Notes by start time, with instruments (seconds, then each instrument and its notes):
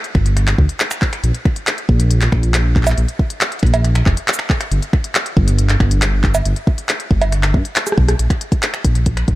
0.04 closed hi-hat
0.15 detuned saw bass G1, finger snap, kick
0.26 closed hi-hat
0.37 finger snap, closed hi-hat
0.48 finger snap, clap, closed hi-hat
0.58 detuned saw bass D2, kick
0.69 closed hi-hat
0.80 clap, closed hi-hat
0.91 finger snap, cabasa
1.02 kick, clap
1.13 finger snap, closed hi-hat
1.24 detuned saw bass A#1, closed hi-hat
1.35 closed hi-hat
1.45 finger snap, kick
1.56 closed hi-hat
1.67 clap, closed hi-hat
1.78 closed hi-hat
1.89 detuned saw bass A#1, kick
2.00 closed hi-hat
2.11 closed hi-hat
2.21 clap, closed hi-hat
2.32 detuned saw bass A#1, finger snap, kick
2.43 closed hi-hat
2.54 clap, closed hi-hat
2.76 kick, clap
2.83 clap, closed hi-hat, cowbell, cabasa
2.90 clap
2.98 detuned saw bass A#1, closed hi-hat
3.08 closed hi-hat
3.19 kick
3.30 closed hi-hat
3.41 clap, closed hi-hat
3.52 closed hi-hat
3.59 detuned saw bass A#1, finger snap, kick, closed hi-hat
3.66 closed hi-hat
3.74 closed hi-hat, cowbell
3.84 finger snap, closed hi-hat
3.95 finger snap, closed hi-hat
4.06 detuned saw bass F1, kick, clap
4.17 closed hi-hat
4.28 clap, closed hi-hat
4.33 cabasa
4.39 finger snap
4.50 kick, clap
4.61 finger snap, closed hi-hat
4.72 detuned saw bass G1, closed hi-hat
4.82 closed hi-hat
4.93 finger snap, kick
5.04 closed hi-hat
5.15 clap, closed hi-hat
5.26 closed hi-hat
5.37 detuned saw bass G1, kick
5.48 closed hi-hat
5.59 closed hi-hat
5.69 clap, closed hi-hat
5.80 detuned saw bass G1, finger snap, kick
5.91 closed hi-hat
6.02 clap, closed hi-hat
6.24 kick, clap
6.35 closed hi-hat, cowbell, cabasa
6.45 detuned saw bass G1, closed hi-hat
6.56 closed hi-hat
6.67 kick
6.78 closed hi-hat
6.89 clap, closed hi-hat
7.00 closed hi-hat
7.11 detuned saw bass G1, kick
7.22 closed hi-hat, cowbell
7.32 finger snap, closed hi-hat
7.43 finger snap, clap, closed hi-hat
7.54 detuned saw bass G2, kick
7.65 closed hi-hat
7.76 clap, closed hi-hat
7.87 cross-stick, closed hi-hat, cabasa
7.92 cross-stick
7.98 detuned saw bass B1, kick
8.08 cross-stick, closed hi-hat
8.19 detuned saw bass A#1, closed hi-hat
8.30 finger snap, kick, closed hi-hat
8.41 closed hi-hat
8.52 kick, closed hi-hat
8.63 clap, closed hi-hat
8.74 finger snap, closed hi-hat
8.85 detuned saw bass A#1, kick, closed hi-hat
8.95 closed hi-hat
9.06 kick, closed hi-hat
9.17 finger snap, closed hi-hat
9.28 detuned saw bass A#1, kick, closed hi-hat